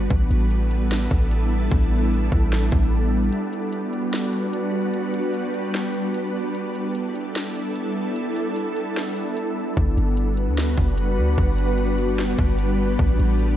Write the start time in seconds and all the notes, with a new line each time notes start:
Already playing: B3
0.10 A1 G3 D4 E4 A4, kick, closed hi-hat
0.30 A1, closed hi-hat
0.51 closed hi-hat
0.71 closed hi-hat
0.91 snare, closed hi-hat
1.11 A1, kick, closed hi-hat
1.31 closed hi-hat
1.72 A1, kick
2.32 A1, kick
2.53 snare
2.72 A1, kick
3.32 F#4 B4, closed hi-hat
3.53 closed hi-hat
3.73 closed hi-hat
3.93 closed hi-hat
4.13 snare, closed hi-hat
4.33 closed hi-hat
4.53 closed hi-hat
4.94 closed hi-hat
5.14 closed hi-hat
5.34 closed hi-hat
5.54 closed hi-hat
5.74 snare, closed hi-hat
5.94 closed hi-hat
6.14 closed hi-hat
6.55 B3 E4 A4, closed hi-hat
6.75 closed hi-hat
6.95 closed hi-hat
7.15 closed hi-hat
7.35 snare, closed hi-hat
7.55 closed hi-hat
7.76 closed hi-hat
8.16 closed hi-hat
8.36 closed hi-hat
8.56 closed hi-hat
8.76 closed hi-hat
8.96 snare, closed hi-hat
9.16 closed hi-hat
9.37 closed hi-hat
9.77 G1 G3 D4 F#4 B4, kick, closed hi-hat
9.97 G1, closed hi-hat
10.17 closed hi-hat
10.37 closed hi-hat
10.47 D2
10.57 snare, closed hi-hat
10.77 F#1, kick, closed hi-hat
10.98 closed hi-hat
11.18 D2
11.38 G1, kick, closed hi-hat
11.58 closed hi-hat
11.78 closed hi-hat
11.98 closed hi-hat
12.18 snare, closed hi-hat
12.38 G1, kick, closed hi-hat
12.59 closed hi-hat
12.99 A1 E4 A4, kick, closed hi-hat
13.19 A1, closed hi-hat
13.39 closed hi-hat